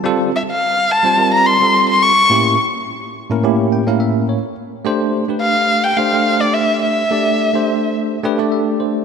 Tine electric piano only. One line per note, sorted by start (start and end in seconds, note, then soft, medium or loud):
0.04 0.30 G3 loud
0.04 0.30 C4 medium
0.04 0.31 F4 medium
0.04 0.31 A4 loud
0.33 0.40 F4 soft
0.33 0.41 A4 soft
1.03 1.16 G3 medium
1.03 1.16 C4 medium
1.03 1.17 F4 medium
1.03 1.17 C5 medium
1.17 1.56 G3 medium
1.17 1.56 C4 medium
1.17 1.57 F4 medium
1.17 1.57 A#4 medium
1.60 2.11 G3 medium
1.60 2.11 C4 medium
1.60 2.11 F4 medium
1.60 2.12 A4 medium
2.17 2.24 F4 soft
2.17 2.24 A4 soft
2.29 2.56 A2 medium
2.29 2.56 A#3 medium
2.29 2.56 C#4 medium
2.29 2.56 E4 medium
2.29 2.57 G4 loud
3.30 3.42 A2 medium
3.30 3.42 A#3 medium
3.30 3.42 C#4 medium
3.30 3.42 E4 medium
3.30 3.43 A#4 loud
3.43 3.82 A2 medium
3.43 3.82 A#3 medium
3.43 3.83 C#4 medium
3.43 3.83 E4 medium
3.43 3.83 G4 medium
3.72 3.86 G5 medium
3.87 4.37 A2 medium
3.87 4.37 A#3 medium
3.87 4.37 C#4 medium
3.87 4.38 E4 medium
3.87 4.38 A#4 medium
3.87 3.99 F5 medium
4.00 4.26 E5 medium
4.29 4.55 C#5 medium
4.43 4.50 E4 soft
4.43 4.51 A4 soft
4.85 5.23 A3 medium
4.85 5.24 D4 medium
4.85 5.24 G4 medium
4.85 5.24 C5 loud
5.28 5.91 A3 medium
5.28 5.91 D4 medium
5.28 5.92 G4 medium
5.28 5.92 B4 medium
5.97 6.11 A3 medium
5.97 6.11 D4 medium
5.97 6.11 G4 medium
5.97 6.12 C5 medium
6.13 7.02 A3 medium
6.13 7.02 D4 medium
6.13 7.02 G4 medium
6.13 7.03 C5 medium
7.11 7.50 A3 medium
7.11 7.50 D4 medium
7.11 7.50 G4 medium
7.11 7.50 D5 medium
7.53 8.17 A3 medium
7.53 8.17 D4 medium
7.53 8.18 G4 medium
7.53 8.18 C5 medium
8.24 8.37 A3 loud
8.24 8.38 D4 medium
8.24 8.38 G4 medium
8.24 8.38 B4 loud
8.24 8.50 G5 medium
8.38 9.05 A3 medium
8.38 9.05 D4 medium
8.38 9.05 G4 medium
8.38 9.05 D5 medium
8.52 8.78 E5 medium
8.80 9.05 C5 medium